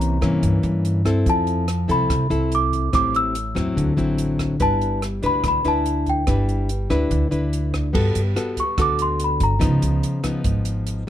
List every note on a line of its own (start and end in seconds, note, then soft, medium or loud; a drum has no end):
0.00 0.18 C2 medium
0.00 0.41 C3 medium
0.00 0.19 E3 medium
0.00 0.19 A#3 medium
0.00 0.19 C#4 medium
0.00 1.03 A#5 medium
0.00 closed hi-hat soft
0.21 0.41 G2 medium
0.21 1.02 E3 medium
0.21 1.02 A#3 medium
0.21 1.02 C#4 medium
0.21 kick soft
0.21 cross-stick medium
0.21 closed hi-hat soft
0.43 0.62 G2 medium
0.43 1.25 G2 medium
0.43 kick medium
0.43 closed hi-hat soft
0.63 1.22 G2 medium
0.63 closed hi-hat soft
0.85 closed hi-hat soft
1.05 1.65 C4 medium
1.05 1.65 E4 medium
1.05 1.65 A4 medium
1.05 kick soft
1.05 cross-stick medium
1.05 closed hi-hat soft
1.26 1.85 F2 medium
1.26 2.08 F3 medium
1.26 1.92 A5 medium
1.26 kick medium
1.26 closed hi-hat soft
1.47 closed hi-hat soft
1.68 cross-stick medium
1.68 closed hi-hat soft
1.88 2.09 C2 medium
1.88 2.27 C4 medium
1.88 2.27 E4 medium
1.88 2.28 A4 medium
1.88 2.55 B5 medium
1.88 kick soft
1.88 closed hi-hat soft
2.09 2.29 C2 medium
2.09 2.91 C3 soft
2.09 kick medium
2.09 cross-stick medium
2.09 closed hi-hat soft
2.30 2.89 C2 medium
2.30 2.90 C4 medium
2.30 2.90 E4 medium
2.30 2.90 A4 medium
2.30 closed hi-hat soft
2.52 2.94 D6 medium
2.52 closed hi-hat soft
2.73 kick soft
2.73 closed hi-hat soft
2.93 3.52 A1 medium
2.93 3.74 A2 medium
2.93 3.35 G3 medium
2.93 3.35 C4 medium
2.93 3.35 E4 medium
2.93 3.16 D6 loud
2.93 kick medium
2.93 cross-stick medium
2.93 closed hi-hat soft
3.14 4.36 E6 loud
3.14 closed hi-hat soft
3.35 closed hi-hat soft
3.55 3.76 E2 medium
3.55 3.94 F#3 medium
3.55 3.94 C4 medium
3.55 3.94 E4 medium
3.55 kick soft
3.55 cross-stick medium
3.55 closed hi-hat soft
3.76 3.97 D2 medium
3.76 4.58 D3 medium
3.76 kick medium
3.76 closed hi-hat soft
3.97 4.56 A1 medium
3.97 4.56 F#3 medium
3.97 4.57 C4 medium
3.97 4.57 E4 medium
3.97 closed hi-hat soft
4.18 closed hi-hat soft
4.39 kick soft
4.39 cross-stick medium
4.39 closed hi-hat soft
4.60 5.19 G1 medium
4.60 5.41 G3 medium
4.60 5.02 D4 medium
4.60 5.02 E4 medium
4.60 5.02 B4 medium
4.60 5.00 A5 loud
4.60 kick medium
4.60 closed hi-hat soft
4.81 closed hi-hat soft
5.02 cross-stick medium
5.02 closed hi-hat soft
5.23 5.42 D2 medium
5.23 5.61 D4 medium
5.23 5.61 E4 medium
5.23 5.61 B4 medium
5.23 5.44 B5 medium
5.23 kick soft
5.23 closed hi-hat soft
5.44 5.63 D2 medium
5.44 6.25 D3 soft
5.44 kick medium
5.44 cross-stick medium
5.44 closed hi-hat soft
5.48 5.67 B5 medium
5.65 6.23 D2 medium
5.65 6.24 D4 medium
5.65 6.24 E4 medium
5.65 6.24 B4 medium
5.65 6.09 A5 medium
5.65 closed hi-hat soft
5.86 closed hi-hat soft
6.06 7.50 G5 medium
6.06 kick soft
6.06 closed hi-hat soft
6.27 6.86 G1 medium
6.27 7.09 G3 medium
6.27 6.69 D4 medium
6.27 6.69 E4 soft
6.27 6.69 B4 medium
6.27 kick medium
6.27 cross-stick medium
6.27 closed hi-hat soft
6.49 closed hi-hat soft
6.69 closed hi-hat soft
6.90 7.09 D2 medium
6.90 7.28 D4 medium
6.90 7.28 E4 medium
6.90 7.29 B4 medium
6.90 kick soft
6.90 cross-stick medium
6.90 closed hi-hat soft
7.10 7.30 D2 medium
7.10 7.92 D3 soft
7.10 kick medium
7.10 closed hi-hat soft
7.31 7.90 D2 medium
7.31 7.91 D4 medium
7.31 7.91 E4 medium
7.31 7.91 B4 medium
7.31 closed hi-hat soft
7.53 closed hi-hat soft
7.74 kick soft
7.74 cross-stick medium
7.74 closed hi-hat soft
7.93 8.14 G1 medium
7.93 8.75 G3 medium
7.93 8.21 B3 medium
7.93 8.21 F#4 medium
7.93 8.21 A4 medium
7.93 kick medium
7.93 crash medium
8.15 8.35 G1 medium
8.15 closed hi-hat soft
8.36 8.63 B3 medium
8.36 8.63 F#4 medium
8.36 8.63 A4 medium
8.36 cross-stick medium
8.36 closed hi-hat soft
8.57 8.79 C#6 medium
8.57 kick soft
8.57 closed hi-hat soft
8.78 9.36 D2 medium
8.78 9.59 D3 medium
8.78 9.58 B3 soft
8.78 9.58 F#4 medium
8.78 9.58 A4 medium
8.78 kick medium
8.78 cross-stick medium
8.78 closed hi-hat medium
8.82 9.00 D6 medium
8.99 9.21 C6 medium
8.99 closed hi-hat soft
9.20 closed hi-hat soft
9.24 9.42 B5 medium
9.40 9.63 G1 medium
9.40 10.42 A#5 medium
9.40 kick soft
9.40 closed hi-hat soft
9.59 9.81 C#2 loud
9.59 10.41 C#3 medium
9.59 10.20 F3 medium
9.59 10.20 B3 medium
9.59 10.20 D#4 medium
9.59 kick medium
9.59 cross-stick medium
9.59 closed hi-hat medium
9.82 10.01 C#2 medium
9.82 closed hi-hat soft
10.03 closed hi-hat soft
10.23 11.04 F3 medium
10.23 11.04 B3 medium
10.23 11.04 D#4 medium
10.23 kick soft
10.23 cross-stick medium
10.23 closed hi-hat soft
10.44 11.03 G#1 medium
10.44 11.09 G#2 medium
10.44 kick medium
10.44 closed hi-hat medium
10.65 closed hi-hat soft
10.87 closed hi-hat soft